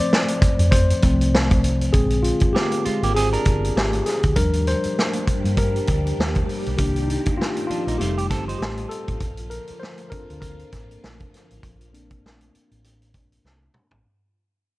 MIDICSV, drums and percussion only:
0, 0, Header, 1, 2, 480
1, 0, Start_track
1, 0, Key_signature, -2, "major"
1, 0, Tempo, 606061
1, 1533, Time_signature, 4, 2, 24, 8
1, 11710, End_track
2, 0, Start_track
2, 0, Title_t, "Drums"
2, 102, Note_on_c, 9, 38, 93
2, 181, Note_off_c, 9, 38, 0
2, 224, Note_on_c, 9, 42, 59
2, 303, Note_off_c, 9, 42, 0
2, 331, Note_on_c, 9, 42, 64
2, 332, Note_on_c, 9, 36, 83
2, 410, Note_off_c, 9, 42, 0
2, 411, Note_off_c, 9, 36, 0
2, 467, Note_on_c, 9, 42, 51
2, 546, Note_off_c, 9, 42, 0
2, 570, Note_on_c, 9, 36, 89
2, 572, Note_on_c, 9, 42, 83
2, 649, Note_off_c, 9, 36, 0
2, 651, Note_off_c, 9, 42, 0
2, 714, Note_on_c, 9, 42, 48
2, 793, Note_off_c, 9, 42, 0
2, 810, Note_on_c, 9, 42, 71
2, 817, Note_on_c, 9, 36, 72
2, 889, Note_off_c, 9, 42, 0
2, 896, Note_off_c, 9, 36, 0
2, 958, Note_on_c, 9, 42, 51
2, 1037, Note_off_c, 9, 42, 0
2, 1066, Note_on_c, 9, 38, 105
2, 1145, Note_off_c, 9, 38, 0
2, 1193, Note_on_c, 9, 42, 44
2, 1198, Note_on_c, 9, 36, 80
2, 1272, Note_off_c, 9, 42, 0
2, 1278, Note_off_c, 9, 36, 0
2, 1297, Note_on_c, 9, 42, 65
2, 1377, Note_off_c, 9, 42, 0
2, 1435, Note_on_c, 9, 42, 46
2, 1514, Note_off_c, 9, 42, 0
2, 1532, Note_on_c, 9, 42, 76
2, 1536, Note_on_c, 9, 36, 97
2, 1611, Note_off_c, 9, 42, 0
2, 1615, Note_off_c, 9, 36, 0
2, 1666, Note_on_c, 9, 42, 56
2, 1745, Note_off_c, 9, 42, 0
2, 1775, Note_on_c, 9, 42, 68
2, 1855, Note_off_c, 9, 42, 0
2, 1900, Note_on_c, 9, 42, 52
2, 1913, Note_on_c, 9, 36, 78
2, 1979, Note_off_c, 9, 42, 0
2, 1992, Note_off_c, 9, 36, 0
2, 2027, Note_on_c, 9, 38, 92
2, 2106, Note_off_c, 9, 38, 0
2, 2151, Note_on_c, 9, 42, 60
2, 2230, Note_off_c, 9, 42, 0
2, 2260, Note_on_c, 9, 42, 70
2, 2339, Note_off_c, 9, 42, 0
2, 2401, Note_on_c, 9, 42, 53
2, 2480, Note_off_c, 9, 42, 0
2, 2505, Note_on_c, 9, 42, 78
2, 2584, Note_off_c, 9, 42, 0
2, 2639, Note_on_c, 9, 42, 49
2, 2718, Note_off_c, 9, 42, 0
2, 2734, Note_on_c, 9, 42, 68
2, 2741, Note_on_c, 9, 36, 73
2, 2814, Note_off_c, 9, 42, 0
2, 2820, Note_off_c, 9, 36, 0
2, 2887, Note_on_c, 9, 42, 50
2, 2966, Note_off_c, 9, 42, 0
2, 2989, Note_on_c, 9, 38, 108
2, 3068, Note_off_c, 9, 38, 0
2, 3112, Note_on_c, 9, 42, 44
2, 3191, Note_off_c, 9, 42, 0
2, 3214, Note_on_c, 9, 42, 64
2, 3225, Note_on_c, 9, 38, 36
2, 3294, Note_off_c, 9, 42, 0
2, 3304, Note_off_c, 9, 38, 0
2, 3350, Note_on_c, 9, 42, 45
2, 3356, Note_on_c, 9, 36, 76
2, 3430, Note_off_c, 9, 42, 0
2, 3436, Note_off_c, 9, 36, 0
2, 3452, Note_on_c, 9, 42, 84
2, 3456, Note_on_c, 9, 36, 100
2, 3531, Note_off_c, 9, 42, 0
2, 3536, Note_off_c, 9, 36, 0
2, 3591, Note_on_c, 9, 42, 53
2, 3670, Note_off_c, 9, 42, 0
2, 3698, Note_on_c, 9, 42, 70
2, 3777, Note_off_c, 9, 42, 0
2, 3830, Note_on_c, 9, 42, 53
2, 3909, Note_off_c, 9, 42, 0
2, 3950, Note_on_c, 9, 38, 92
2, 4029, Note_off_c, 9, 38, 0
2, 4064, Note_on_c, 9, 42, 59
2, 4144, Note_off_c, 9, 42, 0
2, 4178, Note_on_c, 9, 36, 87
2, 4178, Note_on_c, 9, 42, 69
2, 4257, Note_off_c, 9, 36, 0
2, 4257, Note_off_c, 9, 42, 0
2, 4318, Note_on_c, 9, 42, 54
2, 4397, Note_off_c, 9, 42, 0
2, 4414, Note_on_c, 9, 36, 88
2, 4415, Note_on_c, 9, 42, 80
2, 4493, Note_off_c, 9, 36, 0
2, 4494, Note_off_c, 9, 42, 0
2, 4560, Note_on_c, 9, 42, 45
2, 4639, Note_off_c, 9, 42, 0
2, 4651, Note_on_c, 9, 42, 71
2, 4659, Note_on_c, 9, 36, 76
2, 4730, Note_off_c, 9, 42, 0
2, 4738, Note_off_c, 9, 36, 0
2, 4804, Note_on_c, 9, 42, 50
2, 4883, Note_off_c, 9, 42, 0
2, 4913, Note_on_c, 9, 38, 116
2, 4992, Note_off_c, 9, 38, 0
2, 5028, Note_on_c, 9, 42, 45
2, 5038, Note_on_c, 9, 36, 80
2, 5107, Note_off_c, 9, 42, 0
2, 5117, Note_off_c, 9, 36, 0
2, 5140, Note_on_c, 9, 46, 48
2, 5219, Note_off_c, 9, 46, 0
2, 5278, Note_on_c, 9, 42, 46
2, 5357, Note_off_c, 9, 42, 0
2, 5371, Note_on_c, 9, 42, 75
2, 5375, Note_on_c, 9, 36, 101
2, 5450, Note_off_c, 9, 42, 0
2, 5454, Note_off_c, 9, 36, 0
2, 5512, Note_on_c, 9, 42, 54
2, 5591, Note_off_c, 9, 42, 0
2, 5621, Note_on_c, 9, 42, 69
2, 5701, Note_off_c, 9, 42, 0
2, 5746, Note_on_c, 9, 42, 55
2, 5755, Note_on_c, 9, 36, 82
2, 5825, Note_off_c, 9, 42, 0
2, 5834, Note_off_c, 9, 36, 0
2, 5872, Note_on_c, 9, 38, 92
2, 5951, Note_off_c, 9, 38, 0
2, 5992, Note_on_c, 9, 42, 57
2, 6071, Note_off_c, 9, 42, 0
2, 6102, Note_on_c, 9, 42, 69
2, 6181, Note_off_c, 9, 42, 0
2, 6240, Note_on_c, 9, 42, 50
2, 6320, Note_off_c, 9, 42, 0
2, 6342, Note_on_c, 9, 42, 75
2, 6421, Note_off_c, 9, 42, 0
2, 6480, Note_on_c, 9, 42, 48
2, 6559, Note_off_c, 9, 42, 0
2, 6578, Note_on_c, 9, 42, 72
2, 6579, Note_on_c, 9, 36, 74
2, 6586, Note_on_c, 9, 38, 33
2, 6657, Note_off_c, 9, 42, 0
2, 6659, Note_off_c, 9, 36, 0
2, 6665, Note_off_c, 9, 38, 0
2, 6724, Note_on_c, 9, 42, 50
2, 6803, Note_off_c, 9, 42, 0
2, 6829, Note_on_c, 9, 38, 113
2, 6909, Note_off_c, 9, 38, 0
2, 6949, Note_on_c, 9, 42, 46
2, 7028, Note_off_c, 9, 42, 0
2, 7057, Note_on_c, 9, 42, 67
2, 7136, Note_off_c, 9, 42, 0
2, 7190, Note_on_c, 9, 42, 49
2, 7194, Note_on_c, 9, 36, 78
2, 7269, Note_off_c, 9, 42, 0
2, 7273, Note_off_c, 9, 36, 0
2, 7287, Note_on_c, 9, 42, 80
2, 7292, Note_on_c, 9, 36, 91
2, 7366, Note_off_c, 9, 42, 0
2, 7371, Note_off_c, 9, 36, 0
2, 7422, Note_on_c, 9, 42, 54
2, 7501, Note_off_c, 9, 42, 0
2, 7529, Note_on_c, 9, 42, 69
2, 7609, Note_off_c, 9, 42, 0
2, 7662, Note_on_c, 9, 42, 51
2, 7741, Note_off_c, 9, 42, 0
2, 7787, Note_on_c, 9, 38, 92
2, 7866, Note_off_c, 9, 38, 0
2, 7901, Note_on_c, 9, 42, 56
2, 7980, Note_off_c, 9, 42, 0
2, 8014, Note_on_c, 9, 36, 94
2, 8014, Note_on_c, 9, 42, 67
2, 8093, Note_off_c, 9, 36, 0
2, 8093, Note_off_c, 9, 42, 0
2, 8156, Note_on_c, 9, 42, 52
2, 8235, Note_off_c, 9, 42, 0
2, 8251, Note_on_c, 9, 36, 85
2, 8254, Note_on_c, 9, 42, 82
2, 8330, Note_off_c, 9, 36, 0
2, 8333, Note_off_c, 9, 42, 0
2, 8390, Note_on_c, 9, 42, 47
2, 8469, Note_off_c, 9, 42, 0
2, 8492, Note_on_c, 9, 42, 66
2, 8497, Note_on_c, 9, 36, 75
2, 8500, Note_on_c, 9, 38, 33
2, 8571, Note_off_c, 9, 42, 0
2, 8576, Note_off_c, 9, 36, 0
2, 8580, Note_off_c, 9, 38, 0
2, 8640, Note_on_c, 9, 42, 51
2, 8719, Note_off_c, 9, 42, 0
2, 8742, Note_on_c, 9, 38, 112
2, 8821, Note_off_c, 9, 38, 0
2, 8870, Note_on_c, 9, 42, 42
2, 8876, Note_on_c, 9, 36, 84
2, 8949, Note_off_c, 9, 42, 0
2, 8955, Note_off_c, 9, 36, 0
2, 8980, Note_on_c, 9, 42, 67
2, 8991, Note_on_c, 9, 38, 36
2, 9060, Note_off_c, 9, 42, 0
2, 9070, Note_off_c, 9, 38, 0
2, 9112, Note_on_c, 9, 42, 49
2, 9191, Note_off_c, 9, 42, 0
2, 9211, Note_on_c, 9, 42, 76
2, 9213, Note_on_c, 9, 36, 95
2, 9290, Note_off_c, 9, 42, 0
2, 9292, Note_off_c, 9, 36, 0
2, 9351, Note_on_c, 9, 42, 56
2, 9430, Note_off_c, 9, 42, 0
2, 9458, Note_on_c, 9, 42, 70
2, 9538, Note_off_c, 9, 42, 0
2, 9586, Note_on_c, 9, 42, 51
2, 9591, Note_on_c, 9, 36, 83
2, 9665, Note_off_c, 9, 42, 0
2, 9670, Note_off_c, 9, 36, 0
2, 9709, Note_on_c, 9, 38, 95
2, 9789, Note_off_c, 9, 38, 0
2, 9826, Note_on_c, 9, 42, 57
2, 9905, Note_off_c, 9, 42, 0
2, 9937, Note_on_c, 9, 42, 66
2, 10016, Note_off_c, 9, 42, 0
2, 10069, Note_on_c, 9, 42, 53
2, 10149, Note_off_c, 9, 42, 0
2, 10172, Note_on_c, 9, 42, 81
2, 10251, Note_off_c, 9, 42, 0
2, 10310, Note_on_c, 9, 42, 49
2, 10389, Note_off_c, 9, 42, 0
2, 10406, Note_on_c, 9, 42, 72
2, 10410, Note_on_c, 9, 36, 82
2, 10485, Note_off_c, 9, 42, 0
2, 10489, Note_off_c, 9, 36, 0
2, 10550, Note_on_c, 9, 42, 53
2, 10629, Note_off_c, 9, 42, 0
2, 10655, Note_on_c, 9, 38, 52
2, 10734, Note_off_c, 9, 38, 0
2, 10882, Note_on_c, 9, 45, 79
2, 10961, Note_off_c, 9, 45, 0
2, 11018, Note_on_c, 9, 43, 83
2, 11097, Note_off_c, 9, 43, 0
2, 11710, End_track
0, 0, End_of_file